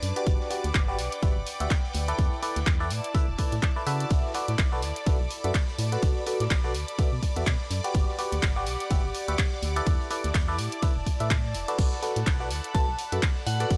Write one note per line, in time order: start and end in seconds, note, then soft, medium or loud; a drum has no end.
0.00 0.13 F#2 medium
0.00 1.04 D4 medium
0.00 2.96 B4 medium
0.00 4.09 D5 medium
0.00 1.04 A5 medium
0.00 4.09 D6 medium
0.00 closed hi-hat medium
0.00 open hi-hat loud
0.16 0.48 F#4 medium
0.16 0.48 G4 medium
0.16 0.48 B4 medium
0.16 0.48 D5 loud
0.16 closed hi-hat soft
0.16 closed hi-hat medium
0.26 0.37 G1 loud
0.26 2.96 F#5 medium
0.26 kick loud
0.26 closed hi-hat medium
0.40 snare soft
0.50 0.67 F#4 medium
0.50 0.67 G4 medium
0.50 0.67 B4 medium
0.50 0.67 D5 loud
0.50 closed hi-hat medium
0.50 open hi-hat loud
0.64 0.72 D2 medium
0.64 snare soft
0.64 closed hi-hat medium
0.73 1.00 G1 loud
0.73 kick loud
0.73 snare loud
0.73 clap loud
0.73 closed hi-hat medium
0.88 0.97 F#4 loud
0.88 0.97 G4 medium
0.88 0.97 B4 medium
0.88 0.97 D5 loud
0.94 2.96 G5 medium
0.94 snare medium
0.99 1.09 B1 medium
0.99 closed hi-hat medium
0.99 open hi-hat loud
1.12 closed hi-hat medium
1.22 1.33 G1 loud
1.22 1.34 F#4 medium
1.22 1.34 G4 medium
1.22 1.34 B4 medium
1.22 1.34 E5 medium
1.22 kick loud
1.22 closed hi-hat medium
1.36 1.44 G1 medium
1.46 closed hi-hat medium
1.46 open hi-hat loud
1.60 1.68 D2 medium
1.60 1.69 F#4 medium
1.60 1.69 G4 medium
1.60 1.69 B4 medium
1.60 1.69 E5 medium
1.60 closed hi-hat medium
1.71 kick loud
1.71 snare loud
1.71 clap loud
1.71 closed hi-hat medium
1.71 closed hi-hat loud
1.84 closed hi-hat soft
1.93 2.13 D2 loud
1.93 closed hi-hat medium
1.93 open hi-hat loud
2.08 2.40 E4 loud
2.08 2.40 A4 medium
2.08 2.40 B4 medium
2.08 2.40 D5 loud
2.08 closed hi-hat medium
2.19 2.29 E2 loud
2.19 5.45 E4 medium
2.19 kick loud
2.19 closed hi-hat medium
2.33 closed hi-hat soft
2.43 2.59 E4 medium
2.43 2.59 A4 medium
2.43 2.59 B4 medium
2.43 2.59 D5 loud
2.43 closed hi-hat medium
2.43 open hi-hat loud
2.49 8.72 D5 medium
2.56 2.64 D2 medium
2.56 snare medium
2.56 closed hi-hat medium
2.66 2.92 E2 loud
2.66 kick loud
2.66 snare loud
2.66 clap loud
2.66 closed hi-hat medium
2.80 2.89 E4 loud
2.80 2.89 A4 medium
2.80 2.89 B4 medium
2.80 2.89 D5 loud
2.80 closed hi-hat soft
2.90 3.01 A2 medium
2.90 closed hi-hat medium
2.90 open hi-hat loud
2.95 5.02 A5 medium
3.04 closed hi-hat medium
3.15 3.26 E4 medium
3.15 3.26 A4 medium
3.15 3.26 B4 medium
3.15 3.26 E5 medium
3.15 kick loud
3.15 closed hi-hat medium
3.28 3.36 E1 medium
3.38 3.55 E4 medium
3.38 3.55 A4 medium
3.38 3.55 B4 medium
3.38 3.55 D5 medium
3.38 kick medium
3.38 open hi-hat medium
3.38 open hi-hat loud
3.52 3.60 A2 loud
3.52 closed hi-hat medium
3.62 kick loud
3.62 snare loud
3.62 clap loud
3.62 closed hi-hat medium
3.76 3.84 E4 medium
3.76 3.84 A4 medium
3.76 3.84 B4 medium
3.76 3.84 D5 loud
3.87 4.05 C#3 medium
3.87 4.32 F#4 medium
3.87 4.32 A4 medium
3.87 4.32 B4 medium
3.87 4.32 E5 loud
3.87 closed hi-hat medium
3.87 open hi-hat loud
4.00 closed hi-hat medium
4.00 closed hi-hat soft
4.10 4.21 B1 loud
4.10 8.65 A4 medium
4.10 11.80 D5 medium
4.10 11.80 D6 medium
4.10 kick loud
4.10 closed hi-hat medium
4.10 ride medium
4.25 snare soft
4.29 10.64 B5 medium
4.34 4.51 F#4 medium
4.34 4.51 A4 medium
4.34 4.51 B4 medium
4.34 4.51 D5 loud
4.34 closed hi-hat medium
4.34 open hi-hat loud
4.48 4.56 A2 medium
4.48 snare soft
4.48 closed hi-hat medium
4.58 4.84 B1 loud
4.58 kick loud
4.58 snare loud
4.58 clap loud
4.58 closed hi-hat medium
4.58 ride medium
4.72 4.81 F#4 loud
4.72 4.81 A4 medium
4.72 4.81 B4 medium
4.72 4.81 D5 loud
4.82 4.93 D2 medium
4.82 snare medium
4.82 closed hi-hat medium
4.82 open hi-hat loud
4.96 closed hi-hat medium
5.07 5.17 B1 loud
5.07 5.18 F#4 medium
5.07 5.18 A4 medium
5.07 5.18 B4 medium
5.07 5.18 E5 medium
5.07 kick loud
5.07 closed hi-hat medium
5.07 ride medium
5.20 5.28 B1 medium
5.31 closed hi-hat medium
5.31 open hi-hat loud
5.44 5.52 F#2 medium
5.44 5.53 F#4 medium
5.44 5.53 A4 medium
5.44 5.53 B4 medium
5.44 5.53 E5 medium
5.44 closed hi-hat medium
5.54 kick loud
5.54 snare loud
5.54 clap loud
5.54 closed hi-hat medium
5.54 ride medium
5.68 closed hi-hat soft
5.79 5.97 A2 loud
5.79 closed hi-hat medium
5.79 open hi-hat loud
5.92 6.24 F#4 loud
5.92 6.24 A4 medium
5.92 6.24 B4 medium
5.92 6.24 D5 loud
5.92 closed hi-hat medium
6.02 6.13 B1 loud
6.02 kick loud
6.02 closed hi-hat medium
6.02 ride medium
6.17 closed hi-hat soft
6.26 6.43 F#4 medium
6.26 6.43 A4 medium
6.26 6.43 B4 medium
6.26 6.43 D5 medium
6.26 closed hi-hat medium
6.26 open hi-hat loud
6.40 6.48 A2 loud
6.40 snare medium
6.40 closed hi-hat medium
6.50 6.76 B1 loud
6.50 kick loud
6.50 snare loud
6.50 clap loud
6.50 closed hi-hat medium
6.50 ride medium
6.64 6.73 F#4 loud
6.64 6.73 A4 medium
6.64 6.73 B4 medium
6.64 6.73 D5 loud
6.64 closed hi-hat soft
6.74 6.85 D2 medium
6.74 closed hi-hat medium
6.74 open hi-hat loud
6.88 closed hi-hat medium
6.99 7.10 F#4 medium
6.99 7.10 A4 medium
6.99 7.10 B4 medium
6.99 7.10 E5 medium
6.99 kick loud
6.99 closed hi-hat medium
6.99 ride medium
7.12 7.20 B2 medium
7.23 kick medium
7.23 open hi-hat loud
7.23 open hi-hat medium
7.36 7.44 E2 loud
7.36 7.45 F#4 medium
7.36 7.45 A4 medium
7.36 7.45 B4 medium
7.36 7.45 E5 medium
7.36 closed hi-hat medium
7.47 7.57 B2 medium
7.47 kick loud
7.47 snare loud
7.47 clap loud
7.47 closed hi-hat medium
7.47 ride medium
7.71 7.81 F#2 medium
7.71 closed hi-hat medium
7.71 open hi-hat loud
7.84 8.16 F#4 loud
7.84 8.16 G4 medium
7.84 8.16 B4 medium
7.84 8.16 D5 loud
7.84 closed hi-hat medium
7.84 closed hi-hat soft
7.94 8.05 G1 loud
7.94 10.64 G4 medium
7.94 kick loud
7.94 closed hi-hat medium
7.94 ride medium
8.09 snare soft
8.18 8.35 F#4 medium
8.18 8.35 G4 medium
8.18 8.35 B4 medium
8.18 8.35 D5 medium
8.18 10.64 F#5 medium
8.18 closed hi-hat medium
8.18 open hi-hat loud
8.32 8.40 D2 medium
8.32 snare soft
8.32 closed hi-hat medium
8.42 8.68 G1 medium
8.42 kick loud
8.42 snare loud
8.42 clap loud
8.42 closed hi-hat medium
8.42 ride medium
8.56 8.65 F#4 loud
8.56 8.64 G4 medium
8.56 8.64 B4 medium
8.56 8.64 D5 loud
8.66 8.77 B1 medium
8.66 snare medium
8.66 closed hi-hat medium
8.66 open hi-hat loud
8.80 closed hi-hat medium
8.90 9.01 G1 loud
8.90 9.02 F#4 medium
8.90 9.02 G4 medium
8.90 9.02 B4 medium
8.90 9.02 E5 medium
8.90 kick loud
8.90 closed hi-hat medium
8.90 closed hi-hat loud
8.90 ride medium
9.04 9.12 G1 medium
9.14 closed hi-hat medium
9.14 open hi-hat loud
9.28 9.36 D2 medium
9.28 9.37 F#4 medium
9.28 9.37 G4 medium
9.28 9.37 B4 medium
9.28 9.37 E5 medium
9.28 closed hi-hat medium
9.38 kick loud
9.38 snare loud
9.38 clap loud
9.38 closed hi-hat medium
9.38 ride medium
9.52 closed hi-hat soft
9.62 9.81 D2 loud
9.62 closed hi-hat medium
9.62 open hi-hat loud
9.76 10.08 E4 loud
9.76 10.08 A4 medium
9.76 10.08 B4 medium
9.76 10.08 D5 loud
9.76 closed hi-hat medium
9.86 9.97 E2 loud
9.86 12.81 E4 medium
9.86 kick loud
9.86 closed hi-hat medium
9.86 ride medium
10.01 closed hi-hat soft
10.10 10.27 E4 medium
10.10 10.27 A4 medium
10.10 10.27 B4 medium
10.10 10.27 D5 loud
10.10 closed hi-hat medium
10.10 open hi-hat loud
10.17 13.77 D5 medium
10.22 10.32 D2 medium
10.22 13.20 A5 medium
10.22 snare medium
10.22 closed hi-hat medium
10.34 10.60 E2 loud
10.34 kick loud
10.34 snare loud
10.34 clap loud
10.34 closed hi-hat medium
10.34 ride medium
10.48 10.57 E4 loud
10.48 10.57 A4 medium
10.48 10.57 B4 medium
10.48 10.57 D5 loud
10.48 closed hi-hat soft
10.58 10.69 A2 medium
10.58 closed hi-hat medium
10.58 open hi-hat loud
10.72 closed hi-hat medium
10.82 10.94 E4 medium
10.82 10.94 A4 medium
10.82 10.94 B4 medium
10.82 10.94 E5 medium
10.82 kick loud
10.82 closed hi-hat medium
10.82 ride medium
10.96 11.04 E1 medium
11.06 kick medium
11.06 open hi-hat medium
11.06 open hi-hat loud
11.20 11.56 A2 loud
11.20 11.29 E4 medium
11.20 11.29 A4 medium
11.20 11.29 B4 medium
11.20 11.29 E5 medium
11.20 closed hi-hat medium
11.31 kick loud
11.31 snare loud
11.31 clap loud
11.31 closed hi-hat medium
11.31 ride medium
11.54 11.65 E1 medium
11.54 closed hi-hat medium
11.54 open hi-hat loud
11.68 12.00 F#4 loud
11.68 12.00 A4 medium
11.68 12.00 B4 medium
11.68 12.00 D5 loud
11.68 closed hi-hat soft
11.68 closed hi-hat medium
11.78 11.89 B1 loud
11.78 13.77 A4 medium
11.78 13.77 F#5 medium
11.78 13.77 F#6 medium
11.78 kick loud
11.78 closed hi-hat medium
11.78 crash medium
11.78 ride medium
11.92 snare soft
11.98 13.77 B5 medium
12.02 12.19 F#4 medium
12.02 12.19 A4 medium
12.02 12.19 B4 medium
12.02 12.19 D5 medium
12.02 closed hi-hat medium
12.02 open hi-hat loud
12.16 12.24 A2 medium
12.16 snare soft
12.16 closed hi-hat medium
12.27 12.52 B1 medium
12.27 kick loud
12.27 snare loud
12.27 clap loud
12.27 closed hi-hat medium
12.27 ride medium
12.40 12.49 F#4 loud
12.40 12.48 A4 medium
12.40 12.48 B4 medium
12.40 12.48 D5 loud
12.51 12.61 D2 medium
12.51 snare medium
12.51 closed hi-hat medium
12.51 open hi-hat loud
12.64 closed hi-hat medium
12.74 12.85 B1 loud
12.74 12.86 F#4 medium
12.74 12.86 A4 medium
12.74 12.86 B4 medium
12.74 12.86 E5 medium
12.74 12.89 A5 medium
12.74 kick loud
12.74 closed hi-hat medium
12.74 ride medium
12.88 12.96 B1 medium
12.99 closed hi-hat medium
12.99 open hi-hat loud
13.12 13.20 F#2 medium
13.12 13.21 F#4 medium
13.12 13.21 A4 medium
13.12 13.21 B4 medium
13.12 13.21 E5 medium
13.12 closed hi-hat medium
13.22 kick loud
13.22 snare loud
13.22 clap loud
13.22 closed hi-hat medium
13.22 ride medium
13.36 closed hi-hat soft
13.46 13.65 A2 loud
13.46 13.55 F#5 medium
13.46 closed hi-hat medium
13.46 open hi-hat loud
13.60 13.77 F#4 loud
13.60 13.77 A4 medium
13.60 13.77 B4 medium
13.60 13.77 D5 loud
13.60 13.67 F#5 medium
13.60 closed hi-hat medium
13.71 13.77 B1 loud
13.71 kick loud
13.71 closed hi-hat medium
13.71 ride medium